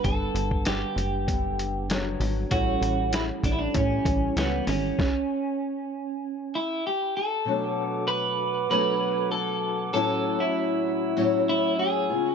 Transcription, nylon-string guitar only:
\new Staff \with { instrumentName = "Nylon-string guitar" } { \time 4/4 \key b \minor \tempo 4 = 97 <d b d'>2 <d b d'>4 <d fis b d'>4 | <a, e g cis' e'>2 <e g cis' e'>4 <e g cis' e'>4 | r1 | <b, fis a d'>2 <b, fis a d'>2 |
<a, fis cis' e'>2 <a, fis cis' e'>4. <cis gis b eis'>8 | }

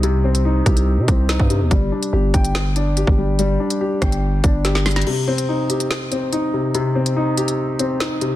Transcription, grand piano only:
\new Staff \with { instrumentName = "Grand piano" } { \time 4/4 \key c \minor \tempo 4 = 143 <c c' ees'>8 c'8 ees'8 g'4 c'8 ees'8 c8 | g8 d'8 g'8 g''4 d'8 g'8 g8 | g8 d'8 g'8 g''4 d'8 g'8 g8 | c8 c'8 ees'8 g'4 c'8 ees'8 c8 |
c8 c'8 ees'8 g'4 c'4 c8 | }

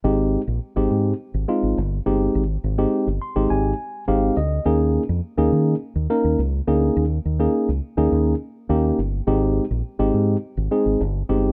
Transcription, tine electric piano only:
\new Staff \with { instrumentName = "Tine electric piano" } { \time 4/4 \key aes \major \tempo 4 = 104 << { r1 | r4. c'''8 aes''4 f''8 ees''8 | r1 | r1 |
r1 | } \\ { <aes c' ees' g'>8. r8 <aes c' ees' g'>8. r8 <aes c' ees' f'>8 r8 <aes c' ees' g'>8~ | <aes c' ees' g'>16 r8 <aes c' ees' g'>8 r8 <aes c' ees' g'>8. r8 <aes c' ees' g'>8 r8 | <bes des' ees' aes'>8. r8 <bes des' ees' aes'>8. r8 <bes des' ees' bes'>8 r8 <bes des' ees' aes'>8~ | <bes des' ees' aes'>16 r8 <bes des' ees' aes'>8 r8 <bes des' ees' aes'>8. r8 <bes des' ees' g'>8 r8 |
<aes c' ees' g'>8. r8 <aes c' ees' g'>8. r8 <aes c' ees' aes'>8 r8 <aes c' ees' g'>8 | } >> }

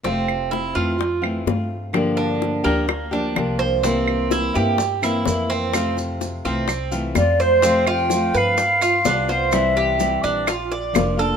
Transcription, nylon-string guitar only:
\new Staff \with { instrumentName = "Nylon-string guitar" } { \time 4/4 \key f \major \tempo 4 = 127 <c a c' f'>4. <e a c' f'>8 r8 <e a c' f'>8 <a c' f'>4 | <d f bes d' g'>4. <f bes d' g'>8 r8 <f bes d' g'>8 <f bes d' g'>4 | <c e bes c' e'>4. <e bes c' e'>8 r8 <e bes c' e'>8 <e bes c' e'>4 | <c a c' f'>4. <e a c' f'>8 r8 <e a c' f'>8 <a c' f'>4 |
<c f a c' f'>4 <f a c' f'>4 r4 <g b f'>8 <b f'>8 | <c e g c' e'>4 <e g c' e'>4 r4 <f bes d' f'>8 <bes d' f'>8 | }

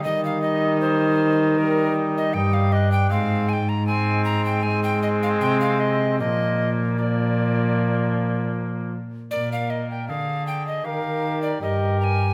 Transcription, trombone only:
\new Staff \with { instrumentName = "Trombone" } { \clef bass \time 4/4 \key bes \mixolydian \tempo 4 = 78 g2 g4 g4 | aes8 r8 aes4 aes2 | f4 f2~ f8 r8 | r2 bes'4 g'4 | }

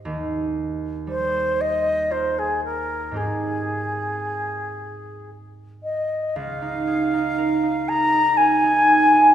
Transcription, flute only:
\new Staff \with { instrumentName = "Flute" } { \time 3/4 \key aes \major \tempo 4 = 58 r4 c''8 ees''8 c''16 aes'16 bes'8 | aes'2 r8 ees''8 | \key des \major f''4. bes''8 aes''4 | }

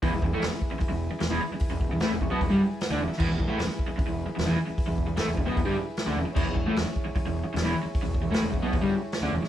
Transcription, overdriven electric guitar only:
\new Staff \with { instrumentName = "Overdriven electric guitar" } { \clef bass \time 4/4 \key e \mixolydian \tempo 4 = 152 <e, e>16 e,16 e,16 <a, a>16 e,16 r4 e,8 r16 e,16 <e, e>16 r8 | r16 e,8 e,16 <a, a>16 e,16 e,16 <b, b>16 e,16 <g, g>16 r8. <d d'>16 e,16 r16 | <e, e>16 e,16 e,16 <a, a>16 e,16 r4 e,8 r16 e,16 <e, e>16 r8 | r16 e,8 e,16 <a, a>16 e,16 e,16 <b, b>16 e,16 <g, g>16 r8. <d d'>16 e,16 r16 |
<e, e>16 e,16 e,16 <a, a>16 e,16 r4 e,8 r16 e,16 <e, e>16 r8 | r16 e,8 e,16 <a, a>16 e,16 e,16 <b, b>16 e,16 <g, g>16 r8. <d d'>16 e,16 r16 | }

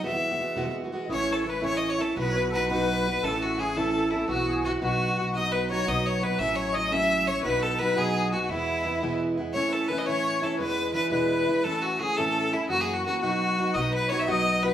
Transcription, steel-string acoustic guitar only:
\new Staff \with { instrumentName = "Steel-string acoustic guitar" } { \time 6/8 \key a \lydian \tempo 4. = 114 <e, b, e gis b fis'>16 <e gis b fis'>8 <e gis b fis'>16 <e gis b fis'>8 <e, b, e gis b fis'>16 <e gis b fis'>8 <e gis b fis'>16 <e gis b fis'>8 | <a, e a cis' e'>4 <e a cis' e'>8 <a, e a cis' e'>4 <a cis' e'>8 | <b, fis b dis' fis'>4 <fis b dis' fis'>8 <b, fis b dis' fis'>4 <b dis' fis'>8 | <a, e a cis' e'>4 <e a cis' e'>8 <a, e a cis' e'>4 <a cis' e'>8 |
<b, e b e' fis'>4 <e b e' fis'>8 <b, fis b dis' fis'>4 <b dis' fis'>8 | <b, fis b dis' fis'>4 <fis b dis' fis'>8 <b, fis b dis' fis'>4 <b dis' fis'>8 | <a, fis a cis' e'>4 <fis a cis' e'>8 <a, fis a cis' e'>4 <a cis' e'>8 | <b, fis b dis' fis'>4 <fis b dis' fis'>8 <b, fis b dis' fis'>4 <b dis' fis'>8 |
<e, b, e gis b e'>4 <e gis b e'>8 <e, b, e gis b e'>4 <e gis b e'>8 | <a, e a cis' e'>4 <e a cis' e'>8 <a, e a cis' e'>4 <a cis' e'>8 | <e, b, e gis d' e'>4 <e gis d' e'>8 <e, b, e gis d' e'>4 <e gis d' e'>8 | <a, e a cis' e'>4 <e a cis' e'>8 <a, e a cis' e'>4 <a cis' e'>8 |
<fis, cis e ais cis' fis'>4 <e ais cis' fis'>8 <b, fis b dis' fis'>4 <b dis' fis'>8 | <b, fis b dis' fis'>4 <fis b dis' fis'>8 <b, fis b dis' fis'>4 <b dis' fis'>8 | }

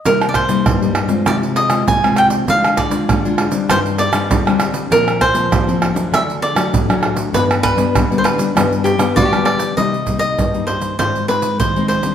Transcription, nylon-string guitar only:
\new Staff \with { instrumentName = "Nylon-string guitar" } { \time 4/4 \key g \phrygian \tempo 4 = 99 << { <g bes ees'>8 r16 <g bes ees'>8 <g bes ees'>8 <aes c' f'>4 <aes c' f'>8 <aes c' f'>8. | <aes d' f'>8 r16 <aes d' f'>8 <aes d' f'>8 <g c' d'>4 <g c' d'>8 <g c' d'>8. | <f bes c'>8 r16 <f bes c'>8 <f bes c'>8 <fis a d'>4 <fis a d'>8 <fis a d'>8. | <g b d'>8. <g b d'>8 <g b d'>8 <g b d'>16 <g b d'>8. <g b d'>8 <g b d'>8. |
\key c \minor <g bes ees'>16 r16 <g bes ees'>8. <g bes ees'>8. <aes c' ees'>16 r16 <aes c' ees'>8. <aes c' ees'>8 <g c' d'>16 | } \\ { c4 g,4 c4 c4 | d4 d4 g,4 d4 | bes,4 f,4 d4 a,4 | g,4 d4 g,4 d4 |
c4 g,4 aes,4 ees4 | } >> }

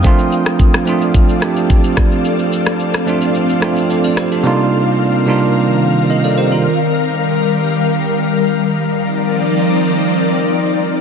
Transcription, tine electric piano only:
\new Staff \with { instrumentName = "Tine electric piano" } { \time 4/4 \key d \phrygian \tempo 4 = 109 << { r1 | r2. <c'' f''>16 <a' d''>16 <g' c''>16 <d' a'>16~ | <d' a'>16 r2 r8. <bes' ees''>16 <a' d''>16 <g' c''>16 <f' bes'>16~ | <f' bes'>16 r2. r8. |
r1 | } \\ { <f a c' d' f'>4 r8 <f a c' d' f'>4 <f a c' d' g'>4. | r4. <f a c' d' f'>4 <f a c' d' f'>4 r8 | <c g bes d' ees' f'>4 r8 <c g bes d' ees' f'>4 r4. | r1 |
r1 | } >> }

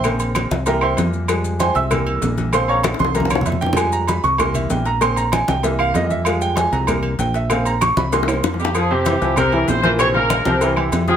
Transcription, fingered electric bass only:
\new Staff \with { instrumentName = "Fingered electric bass" } { \clef bass \time 4/4 \key c \phrygian \tempo 4 = 193 bes,,4. c,4. f,4~ | f,4. c,4. bes,,4~ | bes,,4. c,4. f,4~ | f,4. c,4. bes,,4~ |
bes,,4. c,4. f,4~ | f,4. c,4. bes,,4~ | bes,,4. c,4. f,4~ | f,4. c,4. bes,,4~ |
bes,,4. c,4. f,4 | }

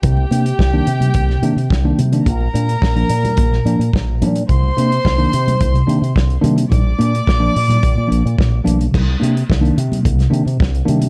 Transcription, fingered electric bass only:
\new Staff \with { instrumentName = "Fingered electric bass" } { \clef bass \time 4/4 \key c \minor \tempo 4 = 108 c,8 c8 c,8 c8 c,8 c16 c16 c,8 c8 | bes,,8 bes,8 bes,,8 bes,8 bes,,8 bes,16 bes,16 bes,,8 bes,8 | c,8 c8 c,8 c8 c,8 c16 c16 c,8 c8 | bes,,8 bes,8 bes,,8 bes,8 bes,,16 bes,16 bes,,16 bes,16 bes,,8 b,,8 |
c,8 c8 c,8 c8 c,8 c16 c16 c,8 c8 | }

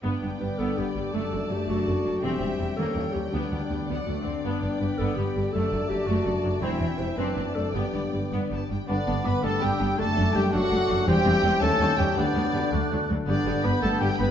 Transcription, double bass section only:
\new Staff \with { instrumentName = "Double bass section" } { \clef bass \time 6/8 \key g \major \tempo 4. = 109 g,,8 g,,8 g,,8 g,,8 g,,8 g,,8 | fis,,8 fis,,8 fis,,8 fis,,8 fis,,8 fis,,8 | e,,8 e,,8 e,,8 ees,8 ees,8 ees,8 | d,8 d,8 d,8 d,8 d,8 d,8 |
g,,8 g,,8 g,,8 g,,8 g,,8 g,,8 | fis,,8 fis,,8 fis,,8 fis,,8 fis,,8 fis,,8 | e,,8 e,,8 e,,8 fis,,8 fis,,8 fis,,8 | g,,8 g,,8 g,,8 g,,8 g,,8 g,,8 |
g,,8 g,,8 g,,8 g,,8 g,,8 g,,8 | fis,,8 fis,,8 fis,,8 fis,,8 fis,,8 fis,,8 | e,,8 e,,8 e,,8 ees,8 ees,8 ees,8 | d,8 d,8 d,8 d,8 d,8 d,8 |
g,,8 g,,8 g,,8 g,,8 g,,8 g,,8 | }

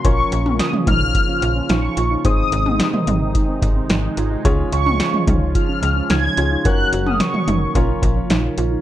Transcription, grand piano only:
\new Staff \with { instrumentName = "Grand piano" } { \time 4/4 \key bes \minor \tempo 4 = 109 <des' f' bes' des''>1 | <c' ees' aes' c''>1 | <des' f' aes' des''>2.~ <des' f' aes' des''>8 <des' f' aes' des''>8 | <des' ges' bes' des''>2 <des' f' bes' des''>2 | }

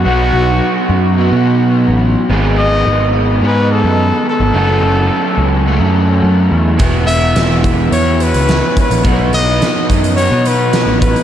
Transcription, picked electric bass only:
\new Staff \with { instrumentName = "Picked electric bass" } { \clef bass \time 4/4 \key b \mixolydian \tempo 4 = 107 b,,8 b,,8 r8 fis,8. b,4 a,,8 r16 | gis,,4 gis,,4 gis,8. fis,8 r8 gis,,16 | fis,,8 fis,,8 r8 cis,8. fis,8. fis,8 e,8 | e,,4 e,,4 e,8. cis,8 r8 ais,,16 |
b,,8 b,,8 r8 fis,8. b,4 a,,8 r16 | }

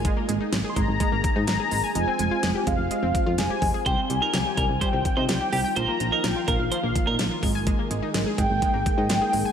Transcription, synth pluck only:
\new Staff \with { instrumentName = "Synth pluck" } { \time 4/4 \key aes \lydian \tempo 4 = 126 aes16 bes16 aes16 ees'16 aes16 aes'16 aes16 r16 aes16 bes16 r16 ees'16 aes16 aes'16 aes16 aes''16 | aes16 c'16 aes16 f'16 aes16 g'16 aes16 r16 aes16 c'16 r16 f'16 aes16 g'16 aes16 aes'16 | g16 c'16 g16 ees'16 g16 g'16 g16 r16 g16 c'16 r16 ees'16 g16 g'16 g16 g''16 | f16 bes16 f16 ees'16 f16 f'16 f16 r16 f16 bes16 r16 ees'16 f16 f'16 aes16 aes''16 |
aes16 bes16 aes16 ees'16 aes16 aes'16 aes16 r16 aes16 bes16 r16 ees'16 aes16 aes'16 aes16 aes''16 | }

